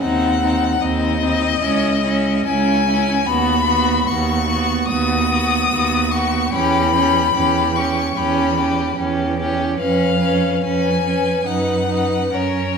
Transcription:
0.01 0.73 D#2 medium
0.01 0.41 C4 medium
0.01 0.41 D#4 medium
0.01 0.83 F#5 medium
0.42 0.81 C4 medium
0.42 0.81 D#4 soft
0.81 1.53 D#2 medium
0.81 1.21 C4 soft
0.81 1.19 D#4 soft
0.81 2.45 D#5 medium
1.20 1.61 C4 soft
1.20 1.60 D#4 soft
1.60 2.38 C#2 medium
1.60 2.03 C#4 medium
1.60 2.03 E4 soft
2.03 2.46 C#4 soft
2.03 2.46 E4 soft
2.45 3.19 C#2 medium
2.45 2.86 C#4 medium
2.45 2.87 E4 soft
2.45 3.28 G#5 medium
2.87 3.27 C#4 soft
2.87 3.27 E4 soft
3.27 3.99 D#2 medium
3.27 3.66 B3 medium
3.27 3.65 F#4 medium
3.27 4.09 B5 medium
3.66 4.07 B3 medium
3.66 4.06 F#4 soft
4.07 4.81 D#2 medium
4.07 4.49 B3 medium
4.07 4.46 F#4 soft
4.07 4.87 C#6 medium
4.47 4.90 B3 soft
4.47 4.88 F#4 soft
4.88 5.63 D#2 medium
4.88 5.31 B3 medium
4.88 5.30 F#4 soft
4.88 6.13 D#6 medium
5.31 5.72 B3 soft
5.31 5.72 F#4 soft
5.72 6.45 D#2 medium
5.72 6.13 B3 soft
5.72 6.11 F#4 soft
6.11 6.53 B3 soft
6.11 6.52 F#4 soft
6.11 6.53 C#6 medium
6.52 7.26 E2 medium
6.52 6.93 C#4 medium
6.52 6.93 G4 medium
6.52 7.77 B5 medium
6.94 7.34 C#4 soft
6.94 7.34 G4 soft
7.35 8.08 E2 medium
7.35 7.76 C#4 soft
7.35 7.74 G4 soft
7.74 8.16 C#4 soft
7.74 8.15 G4 soft
7.74 8.18 C#6 medium
8.16 8.89 E2 medium
8.16 8.57 C#4 medium
8.16 8.56 G4 soft
8.16 8.99 B5 medium
8.58 8.98 C#4 soft
8.58 8.98 G4 soft
8.99 9.71 E2 medium
8.99 9.39 C#4 soft
8.99 9.39 G4 soft
9.40 9.79 C#4 soft
9.40 9.78 G4 soft
9.78 10.54 F2 medium
9.78 10.21 C#4 medium
9.78 10.20 B4 soft
9.78 10.59 F5 medium
10.21 10.63 C#4 soft
10.21 10.62 B4 soft
10.63 11.38 F2 medium
10.63 11.05 C#4 soft
10.63 11.04 B4 soft
10.63 11.48 G#5 medium
11.05 11.46 C#4 soft
11.05 11.46 B4 soft
11.46 12.23 F#2 soft
11.46 11.88 D#4 soft
11.46 11.89 B4 soft
11.46 12.36 F#5 medium
11.89 12.31 D#4 soft
11.89 12.32 B4 soft
12.32 12.78 F#2 soft
12.32 12.76 C#4 soft
12.32 12.77 A#4 soft
12.32 12.78 C#5 medium

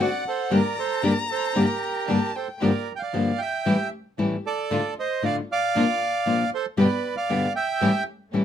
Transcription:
0.00 0.21 C4 medium
0.00 0.09 C4 medium
0.00 0.21 D4 medium
0.00 0.21 F#4 medium
0.00 0.09 F#4 medium
0.00 0.25 D5 medium
0.00 0.53 F#5 medium
0.00 0.24 F#5 medium
0.28 0.50 A4 medium
0.28 0.53 C5 medium
0.50 0.60 G2 medium
0.50 0.60 D3 medium
0.50 0.60 G3 medium
0.50 0.72 A#3 medium
0.50 0.60 A#3 medium
0.50 0.72 D4 medium
0.50 0.60 D4 medium
0.50 0.72 G4 medium
0.50 0.60 G4 medium
0.50 0.76 A#4 medium
0.50 2.07 A#5 medium
0.54 0.79 D5 medium
0.79 1.02 A4 medium
0.79 1.02 C5 medium
1.03 1.12 G2 medium
1.03 1.12 D3 medium
1.03 1.12 G3 medium
1.03 1.24 A#3 medium
1.03 1.12 A#3 medium
1.03 1.25 D4 medium
1.03 1.12 D4 medium
1.03 1.25 G4 medium
1.03 1.12 G4 medium
1.03 1.17 A#4 medium
1.03 1.17 D5 medium
1.31 1.54 A4 medium
1.31 1.57 C5 medium
1.55 1.64 G2 medium
1.55 1.64 D3 medium
1.55 1.65 G3 medium
1.55 1.77 A#3 medium
1.55 1.65 A#3 medium
1.55 1.77 D4 medium
1.55 1.65 D4 medium
1.55 1.77 G4 medium
1.55 1.65 G4 medium
1.55 2.32 G4 medium
1.55 2.32 A#4 medium
2.08 2.17 G2 medium
2.08 2.17 D3 medium
2.08 2.17 G3 medium
2.08 2.30 A#3 medium
2.08 2.18 A#3 medium
2.08 2.30 D4 medium
2.08 2.18 D4 medium
2.08 2.30 G4 medium
2.08 2.18 G4 medium
2.08 2.37 A5 medium
2.36 2.48 A4 medium
2.36 2.48 C5 medium
2.36 2.61 G5 medium
2.60 2.70 G2 medium
2.60 2.70 D3 medium
2.60 2.70 F3 medium
2.60 2.82 A#3 medium
2.60 2.70 A#3 medium
2.60 2.70 D4 medium
2.60 2.83 F4 medium
2.60 2.83 G4 medium
2.60 2.71 G4 medium
2.60 2.93 A#4 medium
2.60 2.91 D5 medium
2.96 3.40 F5 medium
2.96 3.01 G5 medium
3.03 3.38 D5 medium
3.13 3.30 G2 medium
3.13 3.30 D3 medium
3.13 3.31 F3 medium
3.13 3.36 A#3 soft
3.13 3.31 A#3 medium
3.13 3.31 D4 medium
3.13 3.36 F4 soft
3.13 3.36 G4 medium
3.13 3.31 G4 medium
3.38 3.90 E5 medium
3.38 3.88 G5 loud
3.66 3.75 A2 medium
3.66 3.75 E3 medium
3.66 3.75 G3 medium
3.66 3.88 A3 medium
3.66 3.88 C#4 medium
3.66 3.75 C#4 medium
3.66 3.75 E4 medium
3.66 3.88 G4 medium
4.18 4.35 A2 medium
4.18 4.35 E3 medium
4.18 4.35 G3 medium
4.18 4.40 A3 soft
4.18 4.40 C#4 soft
4.18 4.36 C#4 medium
4.18 4.36 E4 medium
4.18 4.41 G4 medium
4.46 4.94 A4 medium
4.46 4.94 D5 medium
4.71 4.80 A2 medium
4.71 4.80 D3 medium
4.71 4.93 A3 medium
4.71 4.80 A3 medium
4.71 4.93 D4 medium
4.71 4.80 D4 medium
4.71 4.93 F4 medium
4.71 4.80 F4 medium
4.99 5.23 C5 medium
4.99 5.25 D#5 medium
5.23 5.39 A2 medium
5.23 5.40 D3 medium
5.23 5.40 A3 medium
5.23 5.45 A3 soft
5.23 5.45 D4 soft
5.23 5.40 D4 medium
5.23 5.40 F4 medium
5.23 5.45 F4 medium
5.23 5.36 D5 medium
5.23 5.36 F5 medium
5.52 6.50 D5 medium
5.52 6.50 F5 loud
5.75 5.84 A#2 medium
5.75 5.84 F3 medium
5.75 5.97 A#3 medium
5.75 5.84 A#3 medium
5.75 5.97 D4 medium
5.75 5.84 D4 medium
5.75 5.97 F4 medium
5.75 5.84 F4 medium
6.26 6.43 A#2 medium
6.26 6.43 F3 medium
6.26 6.43 A#3 medium
6.26 6.48 A#3 medium
6.26 6.48 D4 soft
6.26 6.43 D4 medium
6.26 6.48 F4 medium
6.26 6.44 F4 medium
6.54 6.66 A4 medium
6.54 6.65 C5 medium
6.77 6.86 G2 medium
6.77 6.86 B2 medium
6.77 6.87 D3 medium
6.77 6.87 G3 medium
6.77 6.87 B3 medium
6.77 7.00 B3 medium
6.77 7.00 D4 medium
6.77 6.87 G4 medium
6.77 7.00 G4 medium
6.77 7.15 B4 medium
6.77 7.16 D5 medium
7.17 7.53 D5 medium
7.17 7.53 F5 loud
7.29 7.46 G2 medium
7.29 7.46 B2 medium
7.29 7.46 D3 medium
7.29 7.46 G3 medium
7.29 7.51 B3 soft
7.29 7.46 B3 medium
7.29 7.51 D4 soft
7.29 7.51 G4 medium
7.29 7.46 G4 medium
7.56 8.04 E5 medium
7.56 8.03 G5 loud
7.81 7.90 A2 medium
7.81 7.90 E3 medium
7.81 7.90 G3 loud
7.81 8.02 A3 medium
7.81 8.03 C#4 medium
7.81 7.90 C#4 medium
7.81 7.90 E4 loud
7.81 8.03 G4 medium
8.32 8.45 A2 medium
8.32 8.45 E3 medium
8.32 8.45 G3 medium
8.32 8.45 A3 medium
8.32 8.45 C#4 soft
8.32 8.45 C#4 medium
8.32 8.45 E4 medium
8.32 8.45 G4 medium

